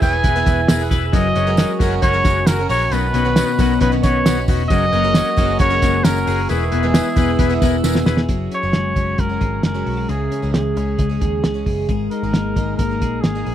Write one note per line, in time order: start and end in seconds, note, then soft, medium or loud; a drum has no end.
0.00 0.20 E1 loud
0.00 1.13 E3 medium
0.00 0.36 E3 medium
0.00 0.16 B3 medium
0.00 0.36 B3 medium
0.00 0.16 E4 medium
0.00 0.46 E4 medium
0.00 0.36 E4 medium
0.00 0.24 G#4 medium
0.00 0.16 G#4 medium
0.00 0.35 G#4 medium
0.00 1.12 B4 medium
0.00 0.17 C#5 medium
0.00 1.12 E5 medium
0.00 2.88 G#5 medium
0.00 0.88 G#5 loud
0.00 1.12 E6 medium
0.00 kick loud
0.00 closed hi-hat medium
0.00 tambourine medium
0.04 0.35 B4 medium
0.23 0.42 E1 loud
0.23 0.39 B3 medium
0.23 0.39 E4 medium
0.23 0.39 G#4 medium
0.23 0.68 G#4 medium
0.23 0.39 B4 loud
0.23 kick medium
0.23 closed hi-hat loud
0.23 tambourine soft
0.36 0.81 E3 medium
0.36 0.81 B3 medium
0.36 0.81 E4 medium
0.36 0.81 G#4 medium
0.36 0.78 B4 medium
0.45 0.65 E1 loud
0.45 0.61 B3 medium
0.45 0.61 E4 medium
0.45 1.18 E4 medium
0.45 0.61 G#4 medium
0.45 0.61 B4 medium
0.45 kick loud
0.45 closed hi-hat medium
0.45 tambourine medium
0.68 0.88 E1 loud
0.68 0.83 B3 medium
0.68 0.83 E4 medium
0.68 0.84 G#4 medium
0.68 1.18 G#4 medium
0.68 0.84 A#4 loud
0.68 0.82 G#5 medium
0.68 snare loud
0.68 closed hi-hat medium
0.68 tambourine loud
0.80 1.14 E4 soft
0.80 1.14 G#4 medium
0.80 1.13 B4 medium
0.80 0.97 F#5 medium
0.90 1.10 E1 medium
0.90 1.05 B3 medium
0.90 1.06 E4 medium
0.90 1.06 G#4 medium
0.90 1.06 B4 medium
0.90 1.18 B4 medium
0.90 kick medium
0.90 closed hi-hat medium
0.90 tambourine medium
0.98 1.12 E5 medium
1.12 1.32 F#1 loud
1.12 4.63 F#3 medium
1.12 1.47 G#3 medium
1.12 1.28 C#4 medium
1.12 1.46 C#4 medium
1.12 1.28 F#4 medium
1.12 1.46 F#4 medium
1.12 1.28 G#4 medium
1.12 2.90 A#4 medium
1.12 1.28 A#4 loud
1.12 1.46 A#4 medium
1.12 1.77 D#5 loud
1.12 4.67 F#5 medium
1.12 2.90 C#6 medium
1.12 kick loud
1.12 closed hi-hat medium
1.12 tambourine soft
1.35 1.63 F#1 loud
1.35 1.51 C#4 medium
1.35 1.80 C#4 medium
1.35 1.51 F#4 medium
1.35 1.51 G#4 medium
1.35 1.51 C#5 medium
1.35 closed hi-hat medium
1.35 tambourine soft
1.47 1.79 F#3 medium
1.47 1.80 G#3 medium
1.47 1.80 C#4 medium
1.47 1.81 F#4 medium
1.47 1.80 A#4 medium
1.57 1.73 C#4 medium
1.57 1.73 F#4 medium
1.57 2.02 F#4 medium
1.57 1.73 G#4 medium
1.57 1.73 A#4 medium
1.57 snare loud
1.57 closed hi-hat medium
1.57 tambourine medium
1.79 1.99 F#1 loud
1.79 2.14 F#3 medium
1.79 2.14 G#3 medium
1.79 1.95 C#4 medium
1.79 2.25 C#4 medium
1.79 2.13 C#4 medium
1.79 1.95 F#4 medium
1.79 2.13 F#4 medium
1.79 1.95 G#4 medium
1.79 1.95 A#4 loud
1.79 2.12 A#4 loud
1.79 kick loud
1.79 closed hi-hat medium
1.79 tambourine soft
2.02 2.21 F#1 loud
2.02 2.17 C#4 medium
2.02 2.17 F#4 medium
2.02 2.47 F#4 medium
2.02 2.18 G#4 medium
2.02 2.18 A#4 loud
2.02 2.48 C#5 loud
2.02 kick medium
2.02 closed hi-hat medium
2.02 tambourine soft
2.13 2.91 F#3 medium
2.13 2.59 G#3 medium
2.13 2.61 C#4 medium
2.13 2.60 F#4 medium
2.13 2.58 A#4 medium
2.24 2.44 F#1 loud
2.24 2.40 C#4 medium
2.24 3.17 C#4 medium
2.24 2.40 F#4 medium
2.24 2.40 G#4 medium
2.24 2.40 A#4 medium
2.24 kick medium
2.24 snare soft
2.24 closed hi-hat medium
2.24 tambourine medium
2.47 2.66 F#1 loud
2.47 2.62 C#4 medium
2.47 4.48 F#4 medium
2.47 2.63 F#4 medium
2.47 2.63 G#4 medium
2.47 2.69 A#4 medium
2.47 2.63 A#4 medium
2.47 snare loud
2.47 closed hi-hat medium
2.47 tambourine loud
2.59 2.93 C#4 medium
2.59 2.93 F#4 medium
2.59 2.92 A#4 medium
2.69 2.88 A#1 medium
2.69 2.85 C#4 medium
2.69 2.85 F#4 medium
2.69 2.85 G#4 medium
2.69 2.96 A#4 medium
2.69 2.85 A#4 medium
2.69 2.94 C#5 loud
2.69 open hi-hat medium
2.69 tambourine medium
2.91 3.10 B1 loud
2.91 4.71 B2 medium
2.91 3.25 D#3 medium
2.91 3.25 B3 medium
2.91 3.07 C#4 medium
2.91 3.24 C#4 medium
2.91 3.07 D#4 medium
2.91 3.07 F#4 medium
2.91 3.24 F#4 medium
2.91 4.69 B4 medium
2.91 3.81 B4 loud
2.91 3.07 B4 loud
2.91 4.69 D#5 medium
2.91 4.69 C#6 medium
2.91 closed hi-hat medium
2.91 tambourine soft
3.14 3.42 B1 medium
3.14 3.36 B3 medium
3.14 3.29 C#4 medium
3.14 3.29 D#4 medium
3.14 3.30 F#4 medium
3.14 3.30 B4 medium
3.14 closed hi-hat medium
3.14 tambourine soft
3.25 3.57 B2 medium
3.25 3.58 D#3 medium
3.25 3.58 B3 medium
3.25 3.59 C#4 medium
3.25 3.59 F#4 medium
3.36 3.48 B3 medium
3.36 3.52 C#4 medium
3.36 3.52 D#4 medium
3.36 3.52 F#4 medium
3.36 3.52 B4 medium
3.36 snare loud
3.36 closed hi-hat medium
3.36 tambourine medium
3.48 3.80 C#4 medium
3.58 3.78 B1 loud
3.58 3.92 B2 medium
3.58 3.92 D#3 medium
3.58 3.92 B3 medium
3.58 4.03 B3 medium
3.58 3.74 C#4 medium
3.58 3.91 C#4 medium
3.58 3.74 D#4 medium
3.58 3.74 F#4 medium
3.58 3.91 F#4 loud
3.58 3.74 A#4 medium
3.58 kick loud
3.58 closed hi-hat medium
3.58 tambourine medium
3.80 4.00 B1 loud
3.80 3.96 C#4 medium
3.80 4.26 C#4 medium
3.80 3.96 D#4 medium
3.80 3.97 F#4 medium
3.80 3.91 B4 medium
3.80 3.97 B4 loud
3.80 kick medium
3.80 closed hi-hat medium
3.92 4.38 B2 medium
3.92 4.37 D#3 medium
3.92 4.37 B3 medium
3.92 4.38 C#4 medium
3.92 4.36 F#4 medium
4.03 4.22 B1 loud
4.03 4.25 B3 medium
4.03 4.19 C#4 medium
4.03 4.19 D#4 medium
4.03 4.19 F#4 medium
4.03 4.19 B4 medium
4.03 4.45 C#5 medium
4.03 kick medium
4.03 snare soft
4.03 closed hi-hat medium
4.03 tambourine medium
4.25 4.45 B1 loud
4.25 4.38 B3 medium
4.25 4.40 C#4 medium
4.25 4.41 D#4 medium
4.25 4.41 F#4 medium
4.25 4.41 B4 medium
4.25 snare loud
4.25 closed hi-hat medium
4.25 tambourine loud
4.36 4.70 B3 soft
4.36 4.76 C#4 medium
4.36 4.70 C#4 medium
4.36 4.70 F#4 medium
4.48 4.67 E1 loud
4.48 4.63 C#4 medium
4.48 4.63 D#4 medium
4.48 4.75 F#4 medium
4.48 4.64 F#4 medium
4.48 4.64 B4 medium
4.48 kick medium
4.48 open hi-hat medium
4.48 tambourine medium
4.69 4.89 F#1 loud
4.69 6.50 F#3 medium
4.69 5.04 G#3 medium
4.69 4.85 C#4 medium
4.69 5.03 C#4 medium
4.69 4.86 F#4 medium
4.69 5.03 F#4 medium
4.69 4.86 G#4 medium
4.69 6.48 A#4 medium
4.69 4.86 A#4 loud
4.69 5.03 A#4 medium
4.69 5.55 D#5 loud
4.69 6.48 F#5 medium
4.69 8.25 G#5 medium
4.69 6.47 C#6 medium
4.69 kick loud
4.69 closed hi-hat medium
4.69 tambourine soft
4.92 5.21 F#1 loud
4.92 5.37 A#3 medium
4.92 5.07 C#4 medium
4.92 5.08 F#4 medium
4.92 5.08 G#4 medium
4.92 5.08 A#4 medium
4.92 closed hi-hat medium
4.92 tambourine soft
5.04 5.35 F#3 medium
5.04 5.36 G#3 medium
5.04 5.37 C#4 medium
5.04 5.37 F#4 medium
5.04 5.38 A#4 medium
5.14 5.30 C#4 medium
5.14 5.60 C#4 medium
5.14 5.30 F#4 medium
5.14 5.30 G#4 medium
5.14 5.31 A#4 medium
5.14 snare loud
5.14 closed hi-hat medium
5.14 tambourine medium
5.37 5.56 F#1 loud
5.37 5.71 F#3 medium
5.37 5.71 G#3 medium
5.37 5.82 A#3 medium
5.37 5.52 C#4 medium
5.37 5.70 C#4 medium
5.37 5.52 F#4 medium
5.37 5.69 F#4 loud
5.37 5.53 G#4 medium
5.37 5.53 A#4 loud
5.37 5.69 A#4 loud
5.37 kick loud
5.37 closed hi-hat medium
5.37 tambourine medium
5.59 5.78 F#1 loud
5.59 5.75 C#4 loud
5.59 6.04 C#4 medium
5.59 5.75 F#4 medium
5.59 5.75 G#4 medium
5.59 5.75 A#4 loud
5.59 6.05 C#5 loud
5.59 kick medium
5.59 closed hi-hat loud
5.59 tambourine soft
5.70 6.16 F#3 medium
5.70 6.18 G#3 medium
5.70 6.16 C#4 medium
5.70 6.15 F#4 medium
5.70 6.14 A#4 medium
5.81 6.01 F#1 loud
5.81 6.54 A#3 medium
5.81 5.97 C#4 medium
5.81 5.97 F#4 medium
5.81 5.97 G#4 medium
5.81 5.97 A#4 medium
5.81 kick medium
5.81 snare soft
5.81 closed hi-hat medium
5.81 tambourine medium
6.03 6.24 F#1 medium
6.03 6.19 C#4 medium
6.03 6.54 C#4 medium
6.03 6.19 F#4 medium
6.03 6.19 G#4 medium
6.03 6.49 A#4 medium
6.03 6.19 A#4 medium
6.03 snare loud
6.03 closed hi-hat medium
6.03 tambourine loud
6.15 6.50 C#4 soft
6.15 6.50 F#4 soft
6.15 6.49 A#4 medium
6.26 6.46 F#1 medium
6.26 6.42 C#4 medium
6.26 6.42 F#4 medium
6.26 6.42 G#4 medium
6.26 8.06 G#4 medium
6.26 6.42 A#4 medium
6.26 open hi-hat medium
6.26 tambourine medium
6.48 6.69 E1 loud
6.48 6.83 E3 medium
6.48 8.29 E3 medium
6.48 6.83 G#3 medium
6.48 6.64 B3 medium
6.48 6.82 B3 medium
6.48 6.64 E4 medium
6.48 6.82 E4 medium
6.48 6.64 G#4 medium
6.48 7.80 G#4 medium
6.48 8.26 B4 medium
6.48 6.65 B4 loud
6.48 8.26 E5 medium
6.48 8.26 E6 medium
6.48 closed hi-hat medium
6.48 tambourine soft
6.71 7.00 E1 loud
6.71 6.86 B3 medium
6.71 7.16 B3 medium
6.71 6.87 E4 medium
6.71 6.87 G#4 medium
6.71 6.87 B4 medium
6.71 closed hi-hat medium
6.83 7.15 E3 medium
6.83 7.15 G#3 medium
6.83 7.16 B3 medium
6.83 7.17 E4 medium
6.93 7.09 B3 medium
6.93 7.09 E4 medium
6.93 7.38 E4 medium
6.93 7.09 G#4 medium
6.93 7.09 B4 medium
6.93 snare loud
6.93 closed hi-hat medium
6.93 tambourine medium
7.16 7.35 E1 loud
7.16 7.50 E3 medium
7.16 7.49 G#3 medium
7.16 7.31 B3 medium
7.16 7.60 B3 medium
7.16 7.49 B3 medium
7.16 7.31 E4 medium
7.16 7.48 E4 loud
7.16 7.32 G#4 medium
7.16 7.32 B4 loud
7.16 kick loud
7.16 closed hi-hat medium
7.16 tambourine soft
7.39 7.57 E1 loud
7.39 7.54 B3 loud
7.39 7.54 E4 loud
7.39 7.83 E4 medium
7.39 7.54 G#4 loud
7.39 7.54 B4 loud
7.39 kick medium
7.39 closed hi-hat medium
7.39 tambourine soft
7.50 7.96 E3 medium
7.50 7.96 G#3 medium
7.50 7.95 B3 medium
7.50 7.93 E4 medium
7.61 7.80 E1 loud
7.61 7.76 B3 medium
7.61 8.33 B3 medium
7.61 7.77 E4 medium
7.61 7.77 G#4 medium
7.61 7.77 A#4 loud
7.61 kick medium
7.61 snare soft
7.61 closed hi-hat medium
7.61 tambourine medium
7.83 8.02 E1 medium
7.83 7.99 B3 medium
7.83 7.99 E4 medium
7.83 8.33 E4 medium
7.83 7.99 G#4 medium
7.83 7.99 A#4 medium
7.83 snare medium
7.83 tambourine loud
7.94 8.29 G#3 soft
7.94 8.29 B3 medium
7.94 8.28 E4 medium
7.94 snare medium
8.06 8.25 E1 medium
8.06 8.21 B3 medium
8.06 8.21 E4 medium
8.06 8.21 G#4 medium
8.06 8.29 G#4 medium
8.06 8.22 B4 loud
8.06 snare medium
8.06 tambourine medium
8.17 snare medium
8.29 8.47 F#1 medium
8.29 8.62 F#3 medium
8.29 10.09 F#3 medium
8.29 8.63 G#3 medium
8.29 8.62 C#4 medium
8.29 8.62 F#4 medium
8.29 9.41 G#4 medium
8.29 kick medium
8.29 closed hi-hat medium
8.51 8.95 C#4 medium
8.51 9.21 C#5 loud
8.51 closed hi-hat medium
8.63 8.72 F#1 medium
8.63 8.94 F#3 soft
8.63 8.95 G#3 medium
8.63 8.96 C#4 medium
8.63 8.96 F#4 medium
8.73 8.93 F#1 medium
8.73 9.18 G#3 medium
8.73 snare medium
8.73 closed hi-hat medium
8.95 9.15 F#1 medium
8.95 9.30 F#3 medium
8.95 9.30 G#3 medium
8.95 10.13 C#4 medium
8.95 9.30 C#4 medium
8.95 9.28 F#4 medium
8.95 kick medium
8.95 closed hi-hat medium
9.18 9.37 F#1 loud
9.18 9.63 G#3 medium
9.18 9.64 A#4 medium
9.18 kick medium
9.18 closed hi-hat medium
9.29 9.76 G#3 soft
9.29 9.75 C#4 soft
9.29 9.73 F#4 soft
9.41 9.60 G#1 medium
9.41 9.86 G#4 medium
9.41 kick medium
9.41 closed hi-hat medium
9.63 9.82 F#1 medium
9.63 10.53 G#3 medium
9.63 10.11 A#4 medium
9.63 snare medium
9.63 closed hi-hat medium
9.74 10.08 F#3 medium
9.74 10.09 G#3 medium
9.74 10.09 C#4 medium
9.74 10.08 F#4 medium
9.86 10.05 B1 medium
9.86 9.97 F#4 medium
9.86 open hi-hat medium
9.97 10.08 G#4 soft
10.08 10.27 C#2 medium
10.08 11.89 C#3 medium
10.08 10.42 E3 medium
10.08 10.42 G#3 medium
10.08 10.42 C#4 medium
10.08 10.53 G#4 medium
10.08 11.21 G#4 medium
10.08 10.41 G#4 medium
10.08 closed hi-hat medium
10.31 10.75 C#4 medium
10.31 closed hi-hat medium
10.43 10.52 C#2 medium
10.43 10.77 C#3 soft
10.43 10.75 E3 medium
10.43 10.76 G#3 medium
10.43 10.77 C#4 medium
10.43 10.76 G#4 medium
10.54 10.73 C#2 medium
10.54 10.98 G#3 medium
10.54 11.62 G#4 medium
10.54 snare loud
10.54 closed hi-hat medium
10.76 10.95 C#2 loud
10.76 11.10 E3 medium
10.76 11.10 G#3 medium
10.76 11.93 C#4 medium
10.76 11.10 C#4 medium
10.76 11.08 G#4 medium
10.76 closed hi-hat medium
10.99 11.17 C#2 medium
10.99 11.43 G#3 medium
10.99 kick medium
10.99 closed hi-hat medium
11.09 11.55 G#3 soft
11.09 11.54 C#4 soft
11.09 11.54 G#4 medium
11.21 11.40 D#2 medium
11.21 11.66 G#4 medium
11.21 kick medium
11.21 closed hi-hat medium
11.44 11.62 C#2 medium
11.44 11.88 G#3 medium
11.44 snare loud
11.44 closed hi-hat medium
11.54 11.89 C#3 medium
11.54 11.89 E3 medium
11.54 11.88 G#3 medium
11.54 11.89 C#4 medium
11.54 11.88 G#4 medium
11.66 11.85 F#1 medium
11.66 11.88 G#4 medium
11.66 kick medium
11.66 open hi-hat medium
11.89 12.08 G#1 medium
11.89 13.55 G#3 medium
11.89 12.23 G#3 medium
11.89 12.23 A#3 medium
11.89 12.23 D#4 medium
11.89 13.01 G#4 medium
11.89 12.22 G#4 medium
11.89 kick medium
11.89 closed hi-hat medium
12.11 12.55 D#4 medium
12.11 12.75 A#4 medium
12.11 closed hi-hat medium
12.23 12.32 G#1 medium
12.23 12.54 G#3 soft
12.23 12.56 A#3 medium
12.23 12.56 D#4 medium
12.23 12.57 G#4 medium
12.33 12.53 G#1 medium
12.33 12.78 A#3 medium
12.33 snare loud
12.33 closed hi-hat medium
12.56 12.75 G#1 medium
12.56 12.90 G#3 soft
12.56 12.90 A#3 medium
12.56 13.55 D#4 medium
12.56 12.90 D#4 medium
12.56 12.88 G#4 medium
12.56 kick medium
12.56 closed hi-hat medium
12.78 13.02 G#1 loud
12.78 13.23 A#3 medium
12.78 13.22 A#4 medium
12.78 kick medium
12.78 closed hi-hat medium
12.89 13.36 A#3 soft
12.89 13.35 D#4 soft
12.89 13.34 G#4 medium
13.02 13.20 A#1 medium
13.02 13.44 G#4 medium
13.02 kick medium
13.02 closed hi-hat medium
13.21 13.43 G#1 medium
13.21 13.55 A#3 medium
13.21 13.55 G#4 medium
13.21 snare loud
13.21 closed hi-hat medium
13.35 13.55 G#3 medium
13.35 13.55 A#3 medium
13.35 13.55 D#4 medium
13.35 13.55 G#4 medium
13.45 13.55 A#1 medium
13.45 13.55 G#4 medium
13.45 open hi-hat medium